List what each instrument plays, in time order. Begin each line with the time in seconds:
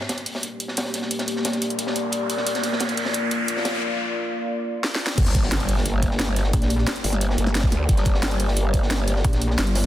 Already playing: analog synth pad A#3 G4 D5, riser
0.01 snare
0.09 snare, closed hi-hat
0.18 closed hi-hat
0.26 closed hi-hat, open hi-hat
0.35 snare
0.43 closed hi-hat
0.60 closed hi-hat
0.68 snare
0.77 snare, closed hi-hat
0.86 closed hi-hat
0.94 snare, closed hi-hat
1.02 snare
1.11 closed hi-hat
1.19 snare, closed hi-hat
1.28 closed hi-hat
1.36 snare
1.45 snare, closed hi-hat
1.53 closed hi-hat
1.62 closed hi-hat
1.70 closed hi-hat
1.79 closed hi-hat
1.87 snare
1.96 closed hi-hat
2.12 closed hi-hat
2.30 closed hi-hat
2.37 snare
2.47 analog synth pad F4, closed hi-hat
2.55 snare, closed hi-hat
2.63 snare, closed hi-hat
2.73 snare
2.80 snare, closed hi-hat
2.89 closed hi-hat
2.97 closed hi-hat, open hi-hat
3.05 snare
3.13 closed hi-hat
3.31 closed hi-hat
3.48 closed hi-hat
3.57 snare
3.65 snare, closed hi-hat
3.74 closed hi-hat
4.84 snare
4.95 snare
5.06 snare
5.18 wobble bass G1, analog synth pad A#3 G4 D5, kick, closed hi-hat, crash, impact
5.26 snare, closed hi-hat
5.34 kick, snare, closed hi-hat
5.43 snare
5.52 snare, closed hi-hat
5.59 closed hi-hat
5.69 closed hi-hat, open hi-hat
5.77 snare
5.85 closed hi-hat
6.03 kick, closed hi-hat
6.11 snare
6.19 snare, closed hi-hat
6.28 snare, closed hi-hat
6.36 snare, closed hi-hat
6.44 snare
6.53 wobble bass A#1, kick, closed hi-hat
6.62 snare, closed hi-hat
6.70 closed hi-hat
6.78 snare
6.87 snare, closed hi-hat
6.96 closed hi-hat
7.04 wobble bass G1, closed hi-hat, open hi-hat
7.13 snare, closed hi-hat
7.21 closed hi-hat
7.30 snare
7.38 wobble bass G1, closed hi-hat
7.47 snare
7.55 snare, closed hi-hat
7.63 kick
7.72 wobble bass D2, snare, closed hi-hat
7.89 wobble bass G1, kick, closed hi-hat
7.97 snare, closed hi-hat
8.05 kick, snare, closed hi-hat
8.14 snare
8.22 snare, closed hi-hat
8.31 closed hi-hat
8.39 closed hi-hat, open hi-hat
8.48 snare
8.56 closed hi-hat
8.74 kick, closed hi-hat
8.82 snare
8.90 snare, closed hi-hat
8.99 snare, closed hi-hat
9.07 snare, closed hi-hat
9.16 snare
9.24 wobble bass A#1, kick, closed hi-hat
9.33 snare, closed hi-hat
9.42 closed hi-hat
9.51 snare
9.58 wobble bass G1, snare, closed hi-hat
9.67 closed hi-hat
9.75 snare, closed hi-hat, open hi-hat